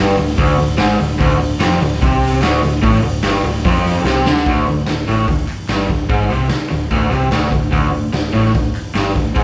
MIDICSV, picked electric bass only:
0, 0, Header, 1, 2, 480
1, 0, Start_track
1, 0, Tempo, 408163
1, 1406, Time_signature, 4, 2, 24, 8
1, 11098, End_track
2, 0, Start_track
2, 0, Title_t, "Picked electric bass"
2, 0, Program_c, 0, 34
2, 0, Note_on_c, 0, 31, 94
2, 203, Note_off_c, 0, 31, 0
2, 213, Note_on_c, 0, 26, 79
2, 433, Note_off_c, 0, 26, 0
2, 450, Note_on_c, 0, 26, 100
2, 672, Note_off_c, 0, 26, 0
2, 704, Note_on_c, 0, 26, 80
2, 919, Note_off_c, 0, 26, 0
2, 940, Note_on_c, 0, 32, 92
2, 1157, Note_off_c, 0, 32, 0
2, 1175, Note_on_c, 0, 26, 83
2, 1394, Note_off_c, 0, 26, 0
2, 1416, Note_on_c, 0, 26, 91
2, 1634, Note_off_c, 0, 26, 0
2, 1651, Note_on_c, 0, 26, 87
2, 1871, Note_off_c, 0, 26, 0
2, 1888, Note_on_c, 0, 29, 103
2, 2109, Note_off_c, 0, 29, 0
2, 2138, Note_on_c, 0, 26, 74
2, 2355, Note_off_c, 0, 26, 0
2, 2383, Note_on_c, 0, 36, 98
2, 2820, Note_off_c, 0, 36, 0
2, 2849, Note_on_c, 0, 26, 99
2, 3069, Note_off_c, 0, 26, 0
2, 3088, Note_on_c, 0, 26, 82
2, 3308, Note_off_c, 0, 26, 0
2, 3332, Note_on_c, 0, 33, 95
2, 3547, Note_off_c, 0, 33, 0
2, 3554, Note_on_c, 0, 26, 88
2, 3781, Note_off_c, 0, 26, 0
2, 3799, Note_on_c, 0, 31, 104
2, 4023, Note_off_c, 0, 31, 0
2, 4041, Note_on_c, 0, 26, 74
2, 4264, Note_off_c, 0, 26, 0
2, 4300, Note_on_c, 0, 29, 96
2, 4737, Note_off_c, 0, 29, 0
2, 4749, Note_on_c, 0, 36, 100
2, 4978, Note_off_c, 0, 36, 0
2, 4998, Note_on_c, 0, 38, 99
2, 5222, Note_off_c, 0, 38, 0
2, 5257, Note_on_c, 0, 26, 93
2, 5472, Note_off_c, 0, 26, 0
2, 5496, Note_on_c, 0, 26, 80
2, 5712, Note_off_c, 0, 26, 0
2, 5723, Note_on_c, 0, 26, 74
2, 5945, Note_off_c, 0, 26, 0
2, 5972, Note_on_c, 0, 33, 83
2, 6190, Note_off_c, 0, 33, 0
2, 6212, Note_on_c, 0, 26, 76
2, 6430, Note_off_c, 0, 26, 0
2, 6688, Note_on_c, 0, 31, 91
2, 6909, Note_off_c, 0, 31, 0
2, 6934, Note_on_c, 0, 26, 79
2, 7152, Note_off_c, 0, 26, 0
2, 7167, Note_on_c, 0, 32, 87
2, 7388, Note_off_c, 0, 32, 0
2, 7422, Note_on_c, 0, 36, 95
2, 7637, Note_off_c, 0, 36, 0
2, 7898, Note_on_c, 0, 26, 78
2, 8115, Note_off_c, 0, 26, 0
2, 8133, Note_on_c, 0, 26, 90
2, 8352, Note_off_c, 0, 26, 0
2, 8369, Note_on_c, 0, 36, 87
2, 8591, Note_off_c, 0, 36, 0
2, 8606, Note_on_c, 0, 26, 91
2, 8829, Note_off_c, 0, 26, 0
2, 8855, Note_on_c, 0, 26, 81
2, 9074, Note_off_c, 0, 26, 0
2, 9088, Note_on_c, 0, 26, 90
2, 9311, Note_off_c, 0, 26, 0
2, 9339, Note_on_c, 0, 26, 80
2, 9557, Note_off_c, 0, 26, 0
2, 9570, Note_on_c, 0, 26, 79
2, 9792, Note_off_c, 0, 26, 0
2, 9810, Note_on_c, 0, 33, 90
2, 10032, Note_off_c, 0, 33, 0
2, 10524, Note_on_c, 0, 31, 90
2, 10750, Note_off_c, 0, 31, 0
2, 10776, Note_on_c, 0, 26, 81
2, 10997, Note_off_c, 0, 26, 0
2, 11007, Note_on_c, 0, 32, 92
2, 11098, Note_off_c, 0, 32, 0
2, 11098, End_track
0, 0, End_of_file